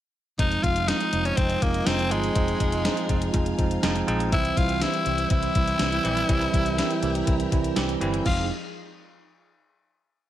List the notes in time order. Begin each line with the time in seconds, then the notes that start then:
0.38 F1 F3 G#3 C4 D#4 F4 D#5 G#5, kick, closed hi-hat
0.52 closed hi-hat
0.63 F1 F3 G#3 C4 F4, kick, closed hi-hat
0.76 closed hi-hat
0.88 F3 G#3 C4 D#4 F4, snare, closed hi-hat
1.00 closed hi-hat
1.12 F1 F3 G#3 C4 D#4, closed hi-hat
1.25 C#4, closed hi-hat
1.37 F1 F3 G#3 C4 D#4, kick, closed hi-hat
1.50 closed hi-hat
1.62 F1 F3 G#3 A#3 C4 D#4, kick, closed hi-hat
1.74 closed hi-hat
1.86 F1 F3 G#3 C4 D#4, snare, closed hi-hat
1.99 closed hi-hat
2.11 G1 F3 G#3 C4 D#4, closed hi-hat
2.24 closed hi-hat
2.35 F1 F3 G#3 C4 D#4 F5, kick, closed hi-hat
2.48 closed hi-hat
2.60 F1 F3 G#3 C4 D#4, kick, closed hi-hat
2.72 closed hi-hat
2.84 F3 G#3 C4 D#4, snare, closed hi-hat
2.97 closed hi-hat
3.09 F1 F3 G#3 C4 D#4, kick, closed hi-hat
3.22 closed hi-hat
3.34 F1 F3 G#3 C4 D#4, kick, closed hi-hat
3.46 closed hi-hat
3.58 F1 F3 G#3 C4 D#4, kick, closed hi-hat
3.71 closed hi-hat
3.83 F1 F3 G#3 C4 D#4, snare, closed hi-hat
3.96 closed hi-hat
4.07 A#1 F3 G#3 C4 D#4, closed hi-hat
4.20 closed hi-hat
4.32 C2 E3 G3 C4 E4 C5 G5, kick, closed hi-hat
4.45 closed hi-hat
4.56 C2 E3 G3 C4 E4 F4, kick, closed hi-hat
4.69 closed hi-hat
4.81 E3 G3 C4 E4 G4, snare, closed hi-hat
4.94 closed hi-hat
5.06 C2 E3 G3 C4 E4, closed hi-hat
5.18 closed hi-hat
5.30 C2 E3 G3 C4 E4, kick, closed hi-hat
5.43 closed hi-hat
5.55 C2 E3 G3 C4 E4, kick, closed hi-hat
5.67 closed hi-hat
5.79 C2 E3 G3 C4 E4, snare, closed hi-hat
5.92 closed hi-hat
6.04 A#1 E3 G3 C4 G4, closed hi-hat
6.17 closed hi-hat
6.28 C2 E3 G3 C4 E4 A#4, kick, closed hi-hat
6.41 closed hi-hat
6.53 C2 E3 G3 C4 E4, kick, closed hi-hat
6.66 closed hi-hat
6.78 E3 G3 C4 E4, snare, closed hi-hat
6.90 closed hi-hat
7.02 C2 E3 G3 C4 G4, closed hi-hat
7.15 closed hi-hat
7.27 C2 E3 G3 C4 E4, kick, closed hi-hat
7.40 closed hi-hat
7.52 C2 E3 G3 C4 E4, kick, closed hi-hat
7.64 closed hi-hat
7.76 C2 E3 G3 C4 G4, snare, closed hi-hat
7.89 closed hi-hat
8.01 G1 E3 G3 C4 E4, closed hi-hat
8.14 closed hi-hat
8.26 F1 F3 G#3 C4 D#4 F4 G#4, kick, crash